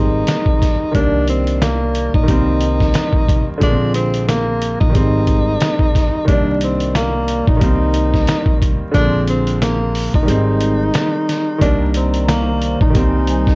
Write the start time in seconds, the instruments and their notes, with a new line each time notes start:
Already playing: upright bass G#1, grand piano D#3 G3 G#3 C4, tenor saxophone D#4
0.27 snare, closed hi-hat
0.46 kick
0.62 kick, snare, closed hi-hat
0.92 upright bass C2, grand piano D#3 G3, tenor saxophone D4, kick, closed hi-hat
0.96 grand piano A#3 D4
1.28 tenor saxophone C4, closed hi-hat
1.47 closed hi-hat
1.62 tenor saxophone A#3, snare, closed hi-hat
1.95 closed hi-hat
2.14 upright bass A#1, tenor saxophone D#4, kick
2.23 grand piano D#3 G3
2.28 upright bass C2, grand piano A#3 C4, kick, closed hi-hat
2.61 closed hi-hat
2.80 kick, snare
2.94 snare, closed hi-hat
3.13 kick
3.29 upright bass C2, kick, closed hi-hat
3.58 upright bass A#1, grand piano D3 F3, kick, closed hi-hat
3.62 grand piano G#3 A#3, tenor saxophone D4
3.71 grand piano C4
3.94 tenor saxophone C4, closed hi-hat
4.14 closed hi-hat
4.28 tenor saxophone A#3, snare, closed hi-hat
4.62 closed hi-hat
4.80 upright bass A#1, tenor saxophone D#4, kick
4.90 grand piano D#3 G3
4.94 upright bass G#1, grand piano G#3 C4, kick, closed hi-hat
5.27 kick, closed hi-hat
5.61 snare, closed hi-hat
5.79 kick
5.95 kick, snare, closed hi-hat
6.25 upright bass C2, grand piano D#3 G3, tenor saxophone D4, kick, closed hi-hat
6.29 grand piano A#3 D4
6.61 tenor saxophone C4, closed hi-hat
6.80 closed hi-hat
6.95 tenor saxophone A#3, snare, closed hi-hat
7.28 closed hi-hat
7.47 upright bass A#1, tenor saxophone D#4, kick
7.57 grand piano D#3 G3
7.61 upright bass C2, grand piano A#3 C4, kick, closed hi-hat
7.94 closed hi-hat
8.14 kick, snare
8.27 snare, closed hi-hat
8.46 kick
8.62 upright bass C2, kick, closed hi-hat
8.91 upright bass A#1, grand piano D3 F3, tenor saxophone D4, kick, closed hi-hat
8.96 grand piano G#3 A#3
9.05 grand piano C4
9.28 tenor saxophone C4, closed hi-hat
9.47 closed hi-hat
9.62 tenor saxophone A#3, snare, closed hi-hat
9.95 open hi-hat
10.14 upright bass A#1, tenor saxophone D#4, kick
10.23 grand piano D#3 G3
10.27 upright bass G#1, grand piano G#3 C4, closed hi-hat
10.61 closed hi-hat
10.94 snare, closed hi-hat
11.29 snare, closed hi-hat
11.58 upright bass C2, grand piano D#3 G3, analog synth pad D#3 C5 A#5, tenor saxophone D4, kick, closed hi-hat
11.63 grand piano A#3 D4
11.94 tenor saxophone C4, closed hi-hat
12.14 closed hi-hat
12.29 tenor saxophone A#3, snare, closed hi-hat
12.62 closed hi-hat
12.81 upright bass A#1, tenor saxophone D#4, kick
12.90 grand piano D#3 G3
12.94 upright bass C2, analog synth pad G3 G#5, grand piano A#3 C4, kick, closed hi-hat
13.27 closed hi-hat
13.47 kick, snare